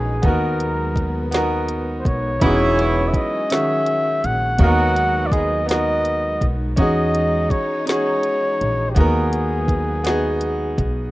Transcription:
Already playing: upright bass A#1, string section E3 G#3 D#4, grand piano C#4 D#4 F#4 G#4 A#4 B4, flugelhorn G#4
0.22 upright bass D#2, string section F#3 B3, grand piano B3 D#4 F#4, flugelhorn A#4, kick, closed hi-hat
0.28 grand piano A#4
0.60 closed hi-hat
0.96 kick, closed hi-hat
1.31 grand piano B3 D#4 F#4, snare, closed hi-hat
1.37 grand piano A#4
1.68 closed hi-hat
1.99 flugelhorn C5
2.05 upright bass B1, flugelhorn C#5, kick, closed hi-hat
2.40 upright bass E1, horn section E3 B3 C#4 E4, string section F#3 G#3 C#4, grand piano C#4 D#4 F#4, kick, closed hi-hat
2.46 grand piano G#4
2.79 closed hi-hat
3.08 flugelhorn E5
3.14 flugelhorn D#5, muted upright bass stroke, kick, closed hi-hat
3.50 grand piano D#3 C#4 F#4, flugelhorn E5, snare, closed hi-hat
3.55 grand piano G#4
3.86 closed hi-hat
4.24 upright bass A#1, flugelhorn F#5, closed hi-hat
4.58 upright bass D#2, horn section F#3 B3 D#4 F#4, string section F#3 B3, grand piano A#3 D#4, flugelhorn F#5, kick, closed hi-hat
4.62 grand piano B3 F#4 A#4
4.96 closed hi-hat
5.26 flugelhorn D5
5.32 horn section G#3 B3 D#4 G#4, flugelhorn D#5, kick, closed hi-hat
5.66 grand piano B3 D#4, flugelhorn D#5, closed hi-hat
5.70 grand piano F#4 A#4, snare
6.05 closed hi-hat
6.41 upright bass B1, kick, closed hi-hat
6.76 upright bass E2, string section E3 D#4, grand piano C#4 D#4 F#4, flugelhorn D#5, kick, closed hi-hat
6.82 grand piano G#4
7.15 closed hi-hat
7.50 flugelhorn C#5, muted upright bass stroke, kick, closed hi-hat
7.86 grand piano C#4 D#4 F#4, flugelhorn C#5, snare, closed hi-hat
7.91 grand piano G#4
8.23 closed hi-hat
8.61 upright bass A#1, closed hi-hat
8.90 flugelhorn G4
8.95 upright bass D#2, string section F#3 B3, grand piano B3 D#4 F#4, flugelhorn G#4, kick, closed hi-hat
9.00 grand piano A#4
9.33 closed hi-hat
9.68 kick, closed hi-hat
10.04 grand piano B3 D#4 F#4, snare, closed hi-hat
10.10 grand piano G#4
10.41 closed hi-hat
10.78 upright bass B1, kick, closed hi-hat

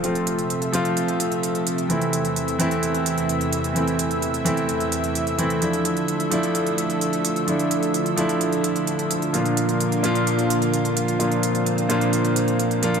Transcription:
Already playing: analog synth pad C3 F3 A3, grand piano F3 A3 C4 F4
0.03 grand piano F3 A3 C4 F4, analog synth pad E5, closed hi-hat
0.15 closed hi-hat
0.27 closed hi-hat
0.39 closed hi-hat
0.50 closed hi-hat
0.62 closed hi-hat
0.72 grand piano F3 A3 C4 F4, closed hi-hat
0.85 closed hi-hat
0.97 closed hi-hat
1.08 closed hi-hat
1.20 closed hi-hat
1.32 closed hi-hat
1.43 closed hi-hat
1.55 closed hi-hat
1.67 closed hi-hat
1.78 closed hi-hat
1.89 analog synth pad E2 E3, grand piano E3 A3 C4 E4, closed hi-hat
2.01 closed hi-hat
2.13 closed hi-hat
2.25 closed hi-hat
2.36 closed hi-hat
2.48 closed hi-hat
2.59 grand piano E3 A3 C4 E4, closed hi-hat
2.71 closed hi-hat
2.83 closed hi-hat
2.95 closed hi-hat
3.06 closed hi-hat
3.18 closed hi-hat
3.29 closed hi-hat
3.41 closed hi-hat
3.53 closed hi-hat
3.64 closed hi-hat
3.75 grand piano E3 A3 C4 E4, closed hi-hat
3.88 closed hi-hat
3.99 closed hi-hat
4.11 closed hi-hat
4.22 closed hi-hat
4.34 closed hi-hat
4.44 grand piano E3 A3 C4 E4, closed hi-hat
4.57 closed hi-hat
4.69 closed hi-hat
4.80 closed hi-hat
4.92 closed hi-hat
5.04 closed hi-hat
5.15 closed hi-hat
5.27 closed hi-hat
5.38 grand piano E3 A3 C4 E4, closed hi-hat
5.50 closed hi-hat
5.61 analog synth pad D3 F3 A3, grand piano F3 A3 D4 E4, closed hi-hat
5.73 closed hi-hat
5.85 closed hi-hat
5.97 closed hi-hat
6.08 closed hi-hat
6.20 closed hi-hat
6.30 grand piano F3 A3 D4 E4, closed hi-hat
6.43 closed hi-hat
6.55 closed hi-hat
6.66 closed hi-hat
6.78 closed hi-hat
6.90 closed hi-hat
7.01 closed hi-hat
7.13 closed hi-hat
7.25 closed hi-hat
7.36 closed hi-hat
7.47 grand piano F3 A3 D4 E4, closed hi-hat
7.59 closed hi-hat
7.71 closed hi-hat
7.83 closed hi-hat
7.94 closed hi-hat
8.06 closed hi-hat
8.16 grand piano F3 A3 D4 E4, closed hi-hat
8.29 closed hi-hat
8.41 closed hi-hat
8.52 closed hi-hat
8.64 closed hi-hat
8.76 closed hi-hat
8.87 closed hi-hat
8.99 closed hi-hat
9.11 closed hi-hat
9.22 closed hi-hat
9.33 grand piano A#2 F3 A#3 D4 F4, analog synth pad A#3 F4, closed hi-hat
9.46 closed hi-hat
9.57 closed hi-hat
9.69 closed hi-hat
9.80 closed hi-hat
9.92 closed hi-hat
10.03 grand piano A#2 F3 A#3 D4 F4, closed hi-hat
10.15 closed hi-hat
10.27 closed hi-hat
10.39 closed hi-hat
10.50 closed hi-hat
10.62 closed hi-hat
10.73 closed hi-hat
10.85 closed hi-hat
10.97 closed hi-hat
11.08 closed hi-hat
11.19 grand piano A#2 F3 A#3 D4 F4, analog synth pad C4, closed hi-hat
11.32 closed hi-hat
11.43 closed hi-hat
11.55 closed hi-hat
11.66 closed hi-hat
11.78 closed hi-hat
11.89 grand piano A#2 F3 A#3 D4 F4, closed hi-hat
12.01 closed hi-hat
12.13 closed hi-hat
12.25 closed hi-hat
12.36 closed hi-hat
12.48 closed hi-hat
12.59 closed hi-hat
12.71 closed hi-hat
12.82 grand piano F3 A#3 D4 F4, closed hi-hat
12.94 closed hi-hat

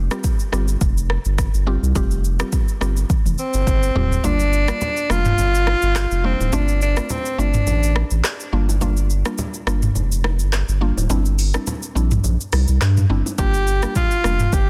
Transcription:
0.11 synth pluck G3 C4 F4 G4, cross-stick, shaker
0.24 kick, shaker
0.40 shaker
0.52 sub bass G1, synth pluck G3 C4 F4 G4, cross-stick, shaker
0.68 shaker
0.81 sub bass F1, kick, shaker
0.98 shaker
1.10 cross-stick
1.25 sub bass G1, shaker
1.38 kick, cross-stick, shaker
1.54 sub bass G1, shaker
1.67 synth pluck G3 C4 F4 G4
1.83 sub bass C2, shaker
1.95 sub bass F1, synth pluck G3 C4 F4 G4, kick, shaker
2.11 shaker
2.24 shaker
2.39 synth pluck G3 C4 F4 G4, cross-stick, shaker
2.52 kick, shaker
2.68 shaker
2.81 sub bass G1, synth pluck G3 C4 F4 G4, cross-stick, shaker
2.97 shaker
3.10 kick, high tom, shaker
3.26 sub bass F1, high tom, shaker
3.38 tenor saxophone C4, shaker
3.54 sub bass G1, shaker
3.67 sub bass G1, kick, shaker
3.83 shaker
3.95 sub bass D1, synth pluck G3 C4 F4 G4, floor tom
4.11 floor tom, shaker
4.24 sub bass G1, synth pluck G3 A#3 D4 F4, tenor saxophone D4, low conga, shaker
4.40 shaker
4.53 shaker
4.68 synth pluck G3 A#3 D4 F4, cross-stick, shaker
4.81 high bongo, low conga, shaker
4.97 shaker
5.10 sub bass F1, synth pluck G3 A#3 D4 F4, tenor saxophone F4, cross-stick, shaker
5.25 mid tom, shaker
5.38 sub bass G1, low conga, shaker
5.55 shaker
5.67 cross-stick, high bongo, low bongo
5.82 sub bass G1, shaker
5.96 cross-stick, clap, high bongo, shaker
6.11 sub bass F1, shaker
6.24 synth pluck G3 A#3 D4 F4, tenor saxophone C4
6.40 sub bass D1, low bongo, shaker
6.52 sub bass G1, synth pluck A3 C4 D4 F4, tenor saxophone D4, low conga, shaker
6.68 shaker
6.81 tenor saxophone D4, shaker
6.97 synth pluck A3 C4 D4 F4, cross-stick, shaker
7.09 tenor saxophone C4, high bongo, low conga, shaker
7.25 shaker
7.38 sub bass G1, synth pluck A3 C4 D4 F4, tenor saxophone D4, shaker
7.54 mid tom, shaker
7.67 sub bass A1, low conga, shaker
7.83 shaker
7.96 cross-stick, high bongo, low bongo
8.11 sub bass A1, shaker
8.24 cross-stick, clap, high bongo, shaker
8.40 shaker
8.52 sub bass G1, synth pluck G3 A#3 D4 F4
8.69 low bongo, shaker
8.81 synth pluck G3 A#3 D4 F4, low conga, shaker
8.97 shaker
9.10 shaker
9.25 synth pluck G3 A#3 D4 F4, cross-stick, shaker
9.38 high bongo, low conga, shaker
9.54 shaker
9.67 sub bass G1, synth pluck G3 A#3 D4 F4, cross-stick, shaker
9.82 mid tom, shaker
9.95 sub bass F1, low conga, shaker
10.12 shaker
10.24 cross-stick, high bongo, low bongo
10.39 sub bass G1, shaker
10.53 cross-stick, clap, high bongo, shaker
10.68 sub bass G1, shaker
10.81 synth pluck G3 A#3 D4 F4
10.97 sub bass D1, low bongo, shaker
11.10 sub bass G1, synth pluck G3 C4 D4 E4, low conga, shaker
11.25 shaker
11.39 open hi-hat, shaker
11.54 synth pluck G3 C4 D4 E4, cross-stick, shaker
11.67 high bongo, low conga, shaker
11.83 shaker
11.95 sub bass A#1, synth pluck G3 C4 D4 E4, shaker
12.11 mid tom, shaker
12.24 sub bass A#1, low conga, shaker
12.41 shaker
12.52 sub bass C2, cross-stick, open hi-hat, high bongo, low bongo, shaker
12.68 sub bass C2, shaker
12.81 sub bass G2, cross-stick, clap, high bongo, shaker
12.97 mid tom, shaker
13.10 sub bass G1, synth pluck G3 C4 D4 E4
13.26 low bongo, shaker
13.38 sub bass G1, synth pluck G3 A#3 D4 F4, tenor saxophone G4, kick, low conga, shaker
13.54 shaker
13.67 shaker
13.82 synth pluck G3 A#3 D4 F4, cross-stick, shaker
13.95 tenor saxophone F4, kick, high bongo, low conga, shaker
14.11 shaker
14.24 sub bass F1, synth pluck G3 A#3 D4 F4, cross-stick, shaker
14.40 mid tom, shaker
14.53 sub bass G1, tenor saxophone G4, kick, low conga, shaker

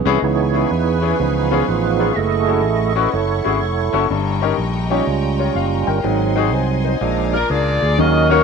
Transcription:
Already playing: tonewheel organ E3 B3 C#4 G#4
0.05 fingered electric bass C2, grand piano B3 C#4 E4 G#4
0.19 fingered electric bass C#2, grand piano C#3, string section C#5 G#5 B5 C#6, tonewheel organ D#5
0.23 tonewheel organ E3 B3 D#4 E4 G#4 C#5
0.53 grand piano B3 C#4 E4 G#4
0.67 tonewheel organ B4 C#5
0.71 fingered electric bass E2, tonewheel organ E3 G#4
1.02 grand piano B3 C#4 E4 G#4
1.19 fingered electric bass C#2, grand piano C#3, tonewheel organ F3 B3 D#4, string section F5
1.51 grand piano B3 C#4 F4 G#4
1.68 fingered electric bass A1, tonewheel organ F4 G#4 B4
1.99 grand piano B3 C#4 F4 G#4
2.12 tonewheel organ E5
2.16 fingered electric bass F#1, tonewheel organ A3 E4 G#4 A4 D#5, string section E4 F#5
2.47 grand piano C#4 E4 F#4 A4
2.64 fingered electric bass A1
2.95 grand piano C#4 E4 F#4 B4
3.12 fingered electric bass F#1, tonewheel organ E4 A4 C#5
3.44 fingered electric bass G#1, grand piano C#4 E4 F#4 G#4
3.62 fingered electric bass F1
3.93 fingered electric bass F#1, grand piano C#4 E4 F#4 A4
4.10 fingered electric bass G1, grand piano G2, string section D#5 G5 A#5
4.42 grand piano C#4 D#4 G4 A#4
4.58 fingered electric bass A#1
4.90 tonewheel organ G3 C#4 F4, grand piano C#4 D#4 G4 C#5
5.07 fingered electric bass C#2
5.39 grand piano F4 C#5
5.55 fingered electric bass F#1, grand piano F5
5.87 fingered electric bass G1, grand piano A#4 G5
6.04 fingered electric bass G#1, grand piano G#2, tonewheel organ F#3 C4 D#4, string section D#5 F#5 G#5 C6
6.36 grand piano C4 D#4 F#4 G#4
6.52 fingered electric bass C2, grand piano C5 G#5
6.85 grand piano D#4 C5
7.01 fingered electric bass A#1, grand piano A#2, tonewheel organ F3 G#3 D4, string section D5 F5 A#5
7.33 grand piano F4 D5, saxophone section A#4
7.50 fingered electric bass C#2, grand piano D4 A#4, saxophone section F4 G#4 D5
7.82 fingered electric bass D2, grand piano G#4
7.98 fingered electric bass D#2, grand piano D#3, tonewheel organ F#3 A#3 C#4 D#4 A#4, saxophone section F#4 A#4 D#5
8.30 grand piano A#3 C#4 D#4 F#4 A#4, saxophone section C#5

